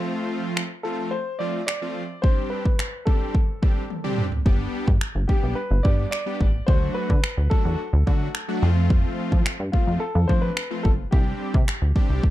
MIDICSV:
0, 0, Header, 1, 5, 480
1, 0, Start_track
1, 0, Tempo, 555556
1, 12, Time_signature, 4, 2, 24, 8
1, 10631, End_track
2, 0, Start_track
2, 0, Title_t, "Grand piano"
2, 0, Program_c, 0, 0
2, 720, Note_on_c, 0, 69, 87
2, 959, Note_on_c, 0, 72, 98
2, 973, Note_off_c, 0, 69, 0
2, 1199, Note_on_c, 0, 74, 96
2, 1213, Note_off_c, 0, 72, 0
2, 1427, Note_off_c, 0, 74, 0
2, 1440, Note_on_c, 0, 74, 99
2, 1918, Note_on_c, 0, 72, 97
2, 1940, Note_off_c, 0, 74, 0
2, 2148, Note_off_c, 0, 72, 0
2, 2159, Note_on_c, 0, 71, 87
2, 2639, Note_on_c, 0, 69, 79
2, 2660, Note_off_c, 0, 71, 0
2, 3571, Note_off_c, 0, 69, 0
2, 4559, Note_on_c, 0, 67, 83
2, 4798, Note_on_c, 0, 71, 97
2, 4813, Note_off_c, 0, 67, 0
2, 5039, Note_on_c, 0, 74, 97
2, 5052, Note_off_c, 0, 71, 0
2, 5266, Note_off_c, 0, 74, 0
2, 5279, Note_on_c, 0, 74, 101
2, 5731, Note_off_c, 0, 74, 0
2, 5759, Note_on_c, 0, 72, 96
2, 5999, Note_on_c, 0, 71, 107
2, 6013, Note_off_c, 0, 72, 0
2, 6451, Note_off_c, 0, 71, 0
2, 6479, Note_on_c, 0, 69, 97
2, 7411, Note_off_c, 0, 69, 0
2, 8399, Note_on_c, 0, 65, 88
2, 8639, Note_on_c, 0, 69, 100
2, 8653, Note_off_c, 0, 65, 0
2, 8878, Note_on_c, 0, 72, 100
2, 8893, Note_off_c, 0, 69, 0
2, 8999, Note_on_c, 0, 71, 98
2, 9009, Note_off_c, 0, 72, 0
2, 9340, Note_off_c, 0, 71, 0
2, 9358, Note_on_c, 0, 69, 92
2, 9413, Note_off_c, 0, 69, 0
2, 9599, Note_on_c, 0, 67, 88
2, 10631, Note_off_c, 0, 67, 0
2, 10631, End_track
3, 0, Start_track
3, 0, Title_t, "Analog polysynth"
3, 0, Program_c, 1, 90
3, 0, Note_on_c, 1, 53, 94
3, 0, Note_on_c, 1, 57, 86
3, 0, Note_on_c, 1, 60, 83
3, 0, Note_on_c, 1, 65, 102
3, 539, Note_off_c, 1, 53, 0
3, 539, Note_off_c, 1, 57, 0
3, 540, Note_off_c, 1, 60, 0
3, 541, Note_off_c, 1, 65, 0
3, 729, Note_on_c, 1, 53, 76
3, 731, Note_on_c, 1, 57, 69
3, 732, Note_on_c, 1, 60, 66
3, 734, Note_on_c, 1, 65, 82
3, 972, Note_off_c, 1, 53, 0
3, 973, Note_off_c, 1, 57, 0
3, 974, Note_off_c, 1, 60, 0
3, 975, Note_off_c, 1, 65, 0
3, 1209, Note_on_c, 1, 53, 74
3, 1211, Note_on_c, 1, 57, 68
3, 1213, Note_on_c, 1, 60, 67
3, 1214, Note_on_c, 1, 65, 79
3, 1392, Note_off_c, 1, 53, 0
3, 1393, Note_off_c, 1, 57, 0
3, 1394, Note_off_c, 1, 60, 0
3, 1394, Note_off_c, 1, 65, 0
3, 1570, Note_on_c, 1, 53, 74
3, 1571, Note_on_c, 1, 57, 67
3, 1573, Note_on_c, 1, 60, 66
3, 1574, Note_on_c, 1, 65, 82
3, 1752, Note_off_c, 1, 53, 0
3, 1753, Note_off_c, 1, 57, 0
3, 1754, Note_off_c, 1, 60, 0
3, 1754, Note_off_c, 1, 65, 0
3, 1930, Note_on_c, 1, 55, 73
3, 1931, Note_on_c, 1, 60, 69
3, 1932, Note_on_c, 1, 62, 68
3, 1934, Note_on_c, 1, 67, 83
3, 2294, Note_off_c, 1, 55, 0
3, 2294, Note_off_c, 1, 60, 0
3, 2295, Note_off_c, 1, 62, 0
3, 2296, Note_off_c, 1, 67, 0
3, 2650, Note_on_c, 1, 55, 77
3, 2651, Note_on_c, 1, 60, 67
3, 2653, Note_on_c, 1, 62, 67
3, 2654, Note_on_c, 1, 67, 83
3, 2893, Note_off_c, 1, 55, 0
3, 2894, Note_off_c, 1, 60, 0
3, 2894, Note_off_c, 1, 62, 0
3, 2895, Note_off_c, 1, 67, 0
3, 3130, Note_on_c, 1, 55, 71
3, 3131, Note_on_c, 1, 60, 65
3, 3133, Note_on_c, 1, 62, 66
3, 3134, Note_on_c, 1, 67, 81
3, 3312, Note_off_c, 1, 55, 0
3, 3313, Note_off_c, 1, 60, 0
3, 3314, Note_off_c, 1, 62, 0
3, 3314, Note_off_c, 1, 67, 0
3, 3490, Note_on_c, 1, 55, 85
3, 3491, Note_on_c, 1, 60, 80
3, 3493, Note_on_c, 1, 62, 77
3, 3494, Note_on_c, 1, 67, 100
3, 3672, Note_off_c, 1, 55, 0
3, 3673, Note_off_c, 1, 60, 0
3, 3674, Note_off_c, 1, 62, 0
3, 3675, Note_off_c, 1, 67, 0
3, 3850, Note_on_c, 1, 55, 88
3, 3851, Note_on_c, 1, 59, 83
3, 3853, Note_on_c, 1, 62, 81
3, 3854, Note_on_c, 1, 67, 95
3, 4214, Note_off_c, 1, 55, 0
3, 4215, Note_off_c, 1, 59, 0
3, 4215, Note_off_c, 1, 62, 0
3, 4216, Note_off_c, 1, 67, 0
3, 4570, Note_on_c, 1, 55, 75
3, 4571, Note_on_c, 1, 59, 68
3, 4572, Note_on_c, 1, 62, 67
3, 4574, Note_on_c, 1, 67, 82
3, 4813, Note_off_c, 1, 55, 0
3, 4813, Note_off_c, 1, 59, 0
3, 4814, Note_off_c, 1, 62, 0
3, 4815, Note_off_c, 1, 67, 0
3, 5049, Note_on_c, 1, 55, 74
3, 5051, Note_on_c, 1, 59, 67
3, 5052, Note_on_c, 1, 62, 65
3, 5054, Note_on_c, 1, 67, 77
3, 5232, Note_off_c, 1, 55, 0
3, 5233, Note_off_c, 1, 59, 0
3, 5234, Note_off_c, 1, 62, 0
3, 5234, Note_off_c, 1, 67, 0
3, 5409, Note_on_c, 1, 55, 71
3, 5411, Note_on_c, 1, 59, 67
3, 5412, Note_on_c, 1, 62, 67
3, 5414, Note_on_c, 1, 67, 80
3, 5592, Note_off_c, 1, 55, 0
3, 5593, Note_off_c, 1, 59, 0
3, 5594, Note_off_c, 1, 62, 0
3, 5594, Note_off_c, 1, 67, 0
3, 5769, Note_on_c, 1, 54, 79
3, 5771, Note_on_c, 1, 57, 69
3, 5772, Note_on_c, 1, 62, 70
3, 5774, Note_on_c, 1, 66, 81
3, 6134, Note_off_c, 1, 54, 0
3, 6134, Note_off_c, 1, 57, 0
3, 6135, Note_off_c, 1, 62, 0
3, 6136, Note_off_c, 1, 66, 0
3, 6489, Note_on_c, 1, 54, 75
3, 6491, Note_on_c, 1, 57, 65
3, 6492, Note_on_c, 1, 62, 69
3, 6493, Note_on_c, 1, 66, 83
3, 6732, Note_off_c, 1, 54, 0
3, 6733, Note_off_c, 1, 57, 0
3, 6734, Note_off_c, 1, 62, 0
3, 6735, Note_off_c, 1, 66, 0
3, 6969, Note_on_c, 1, 54, 72
3, 6970, Note_on_c, 1, 57, 64
3, 6972, Note_on_c, 1, 62, 66
3, 6974, Note_on_c, 1, 66, 83
3, 7152, Note_off_c, 1, 54, 0
3, 7153, Note_off_c, 1, 57, 0
3, 7153, Note_off_c, 1, 62, 0
3, 7154, Note_off_c, 1, 66, 0
3, 7329, Note_on_c, 1, 54, 88
3, 7331, Note_on_c, 1, 57, 79
3, 7332, Note_on_c, 1, 62, 81
3, 7334, Note_on_c, 1, 66, 96
3, 7440, Note_off_c, 1, 57, 0
3, 7449, Note_on_c, 1, 53, 90
3, 7450, Note_off_c, 1, 54, 0
3, 7450, Note_on_c, 1, 57, 82
3, 7451, Note_on_c, 1, 60, 86
3, 7452, Note_off_c, 1, 62, 0
3, 7453, Note_off_c, 1, 66, 0
3, 7453, Note_on_c, 1, 65, 105
3, 8218, Note_off_c, 1, 53, 0
3, 8219, Note_off_c, 1, 57, 0
3, 8220, Note_off_c, 1, 60, 0
3, 8220, Note_off_c, 1, 65, 0
3, 8409, Note_on_c, 1, 53, 76
3, 8410, Note_on_c, 1, 57, 68
3, 8411, Note_on_c, 1, 60, 69
3, 8413, Note_on_c, 1, 65, 81
3, 8652, Note_off_c, 1, 53, 0
3, 8653, Note_off_c, 1, 57, 0
3, 8654, Note_off_c, 1, 60, 0
3, 8654, Note_off_c, 1, 65, 0
3, 8889, Note_on_c, 1, 53, 73
3, 8891, Note_on_c, 1, 57, 66
3, 8892, Note_on_c, 1, 60, 67
3, 8893, Note_on_c, 1, 62, 80
3, 9072, Note_off_c, 1, 53, 0
3, 9073, Note_off_c, 1, 57, 0
3, 9073, Note_off_c, 1, 60, 0
3, 9074, Note_off_c, 1, 62, 0
3, 9249, Note_on_c, 1, 53, 72
3, 9251, Note_on_c, 1, 57, 65
3, 9252, Note_on_c, 1, 60, 66
3, 9254, Note_on_c, 1, 65, 84
3, 9432, Note_off_c, 1, 53, 0
3, 9433, Note_off_c, 1, 57, 0
3, 9433, Note_off_c, 1, 60, 0
3, 9434, Note_off_c, 1, 65, 0
3, 9609, Note_on_c, 1, 55, 77
3, 9610, Note_on_c, 1, 60, 71
3, 9612, Note_on_c, 1, 62, 68
3, 9613, Note_on_c, 1, 67, 79
3, 9974, Note_off_c, 1, 55, 0
3, 9974, Note_off_c, 1, 60, 0
3, 9975, Note_off_c, 1, 62, 0
3, 9976, Note_off_c, 1, 67, 0
3, 10329, Note_on_c, 1, 55, 91
3, 10331, Note_on_c, 1, 60, 81
3, 10332, Note_on_c, 1, 62, 81
3, 10333, Note_on_c, 1, 67, 98
3, 10573, Note_off_c, 1, 55, 0
3, 10573, Note_off_c, 1, 60, 0
3, 10574, Note_off_c, 1, 62, 0
3, 10574, Note_off_c, 1, 67, 0
3, 10631, End_track
4, 0, Start_track
4, 0, Title_t, "Analog synth bass"
4, 0, Program_c, 2, 38
4, 3852, Note_on_c, 2, 31, 108
4, 4037, Note_off_c, 2, 31, 0
4, 4213, Note_on_c, 2, 43, 93
4, 4305, Note_off_c, 2, 43, 0
4, 4452, Note_on_c, 2, 31, 87
4, 4544, Note_off_c, 2, 31, 0
4, 4692, Note_on_c, 2, 35, 84
4, 4784, Note_off_c, 2, 35, 0
4, 4932, Note_on_c, 2, 31, 93
4, 5024, Note_off_c, 2, 31, 0
4, 5053, Note_on_c, 2, 43, 99
4, 5238, Note_off_c, 2, 43, 0
4, 5534, Note_on_c, 2, 33, 87
4, 5718, Note_off_c, 2, 33, 0
4, 5772, Note_on_c, 2, 38, 99
4, 5957, Note_off_c, 2, 38, 0
4, 6133, Note_on_c, 2, 50, 98
4, 6225, Note_off_c, 2, 50, 0
4, 6372, Note_on_c, 2, 38, 90
4, 6464, Note_off_c, 2, 38, 0
4, 6612, Note_on_c, 2, 40, 91
4, 6704, Note_off_c, 2, 40, 0
4, 6852, Note_on_c, 2, 38, 91
4, 6944, Note_off_c, 2, 38, 0
4, 6973, Note_on_c, 2, 50, 89
4, 7158, Note_off_c, 2, 50, 0
4, 7452, Note_on_c, 2, 41, 95
4, 7822, Note_off_c, 2, 41, 0
4, 8053, Note_on_c, 2, 53, 90
4, 8145, Note_off_c, 2, 53, 0
4, 8292, Note_on_c, 2, 43, 82
4, 8384, Note_off_c, 2, 43, 0
4, 8531, Note_on_c, 2, 41, 86
4, 8624, Note_off_c, 2, 41, 0
4, 8772, Note_on_c, 2, 41, 91
4, 8864, Note_off_c, 2, 41, 0
4, 8893, Note_on_c, 2, 53, 99
4, 9078, Note_off_c, 2, 53, 0
4, 9374, Note_on_c, 2, 31, 94
4, 9558, Note_off_c, 2, 31, 0
4, 9612, Note_on_c, 2, 36, 106
4, 9797, Note_off_c, 2, 36, 0
4, 9973, Note_on_c, 2, 48, 100
4, 10065, Note_off_c, 2, 48, 0
4, 10212, Note_on_c, 2, 38, 82
4, 10304, Note_off_c, 2, 38, 0
4, 10451, Note_on_c, 2, 36, 91
4, 10544, Note_off_c, 2, 36, 0
4, 10631, End_track
5, 0, Start_track
5, 0, Title_t, "Drums"
5, 492, Note_on_c, 9, 26, 104
5, 578, Note_off_c, 9, 26, 0
5, 1452, Note_on_c, 9, 26, 107
5, 1539, Note_off_c, 9, 26, 0
5, 1932, Note_on_c, 9, 36, 113
5, 2019, Note_off_c, 9, 36, 0
5, 2293, Note_on_c, 9, 36, 90
5, 2380, Note_off_c, 9, 36, 0
5, 2412, Note_on_c, 9, 26, 109
5, 2498, Note_off_c, 9, 26, 0
5, 2651, Note_on_c, 9, 36, 84
5, 2737, Note_off_c, 9, 36, 0
5, 2891, Note_on_c, 9, 36, 94
5, 2977, Note_off_c, 9, 36, 0
5, 3134, Note_on_c, 9, 36, 90
5, 3220, Note_off_c, 9, 36, 0
5, 3372, Note_on_c, 9, 48, 53
5, 3459, Note_off_c, 9, 48, 0
5, 3492, Note_on_c, 9, 47, 57
5, 3579, Note_off_c, 9, 47, 0
5, 3612, Note_on_c, 9, 45, 84
5, 3699, Note_off_c, 9, 45, 0
5, 3732, Note_on_c, 9, 43, 82
5, 3818, Note_off_c, 9, 43, 0
5, 3852, Note_on_c, 9, 36, 110
5, 3938, Note_off_c, 9, 36, 0
5, 4213, Note_on_c, 9, 36, 91
5, 4299, Note_off_c, 9, 36, 0
5, 4331, Note_on_c, 9, 26, 110
5, 4418, Note_off_c, 9, 26, 0
5, 4570, Note_on_c, 9, 36, 89
5, 4657, Note_off_c, 9, 36, 0
5, 5053, Note_on_c, 9, 36, 94
5, 5140, Note_off_c, 9, 36, 0
5, 5291, Note_on_c, 9, 26, 108
5, 5377, Note_off_c, 9, 26, 0
5, 5534, Note_on_c, 9, 36, 90
5, 5620, Note_off_c, 9, 36, 0
5, 5772, Note_on_c, 9, 36, 110
5, 5858, Note_off_c, 9, 36, 0
5, 6133, Note_on_c, 9, 36, 93
5, 6219, Note_off_c, 9, 36, 0
5, 6252, Note_on_c, 9, 26, 110
5, 6338, Note_off_c, 9, 26, 0
5, 6491, Note_on_c, 9, 36, 85
5, 6577, Note_off_c, 9, 36, 0
5, 6973, Note_on_c, 9, 36, 91
5, 7060, Note_off_c, 9, 36, 0
5, 7212, Note_on_c, 9, 26, 104
5, 7298, Note_off_c, 9, 26, 0
5, 7692, Note_on_c, 9, 36, 113
5, 7778, Note_off_c, 9, 36, 0
5, 8053, Note_on_c, 9, 36, 96
5, 8139, Note_off_c, 9, 36, 0
5, 8172, Note_on_c, 9, 26, 109
5, 8258, Note_off_c, 9, 26, 0
5, 8410, Note_on_c, 9, 36, 89
5, 8497, Note_off_c, 9, 36, 0
5, 8893, Note_on_c, 9, 36, 92
5, 8980, Note_off_c, 9, 36, 0
5, 9131, Note_on_c, 9, 26, 107
5, 9218, Note_off_c, 9, 26, 0
5, 9374, Note_on_c, 9, 36, 91
5, 9460, Note_off_c, 9, 36, 0
5, 9612, Note_on_c, 9, 36, 114
5, 9698, Note_off_c, 9, 36, 0
5, 9973, Note_on_c, 9, 36, 95
5, 10059, Note_off_c, 9, 36, 0
5, 10092, Note_on_c, 9, 26, 108
5, 10178, Note_off_c, 9, 26, 0
5, 10330, Note_on_c, 9, 36, 90
5, 10417, Note_off_c, 9, 36, 0
5, 10571, Note_on_c, 9, 36, 90
5, 10631, Note_off_c, 9, 36, 0
5, 10631, End_track
0, 0, End_of_file